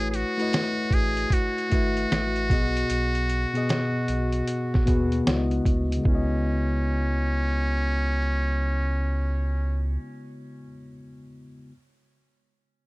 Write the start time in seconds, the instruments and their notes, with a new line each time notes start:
Already playing: sub bass A1, tine electric piano A3 E4 F#4 B4 C#5
0.10 muted trumpet G#4, closed hi-hat
0.15 muted trumpet F#4
0.37 tine electric piano A3 E4 F#4 B4, closed hi-hat
0.42 tine electric piano D#5
0.53 snare, closed hi-hat
0.91 sub bass A1, muted trumpet G#4, kick, closed hi-hat
1.17 closed hi-hat
1.30 muted trumpet F#4, kick, closed hi-hat
1.58 closed hi-hat
1.70 sub bass G#1, tine electric piano A3 E4 F#4 B4, kick, closed hi-hat
1.75 tine electric piano E5
1.97 closed hi-hat
2.12 sub bass A1, snare, closed hi-hat
2.36 closed hi-hat
2.48 sub bass B1, tine electric piano B2 B3 F#4 G#4, kick, closed hi-hat
2.53 tine electric piano D#5
2.77 closed hi-hat
2.90 sub bass B1, closed hi-hat
3.15 closed hi-hat
3.30 closed hi-hat
3.53 tine electric piano B2 B3 F#4 G#4, closed hi-hat
3.58 tine electric piano D#5
3.69 snare, closed hi-hat
4.08 sub bass B1, closed hi-hat
4.32 closed hi-hat
4.48 closed hi-hat
4.74 kick, snare
4.85 sub bass D#2, tine electric piano B2 B3 F#4 G#4, kick, closed hi-hat
4.90 tine electric piano B4
5.12 closed hi-hat
5.25 sub bass C#2, tine electric piano C#3 G#3 B3 E4 F#4, snare, closed hi-hat
5.30 tine electric piano D5
5.36 tine electric piano D#5
5.51 closed hi-hat
5.66 sub bass D2, kick, closed hi-hat
5.92 closed hi-hat
5.97 tine electric piano C#3 G#3
6.04 sub bass C#2, tine electric piano B3 E4, muted trumpet C#4, kick
6.11 tine electric piano F#4 D#5